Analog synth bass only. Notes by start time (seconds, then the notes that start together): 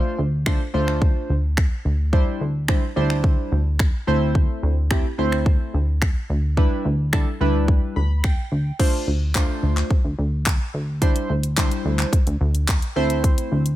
0.18 D2
0.74 D2
1.30 D2
1.85 D2
2.41 D2
2.96 D2
3.52 D2
4.07 D2
4.63 D2
5.18 D2
5.74 D2
6.30 D2
6.85 D2
7.41 D2
7.96 D2
8.52 D2
9.07 D2
9.63 D2
10.05 D2
10.18 D2
10.74 D2
11.30 D2
11.85 D2
12.27 D2
12.41 D2
12.96 D2
13.52 D2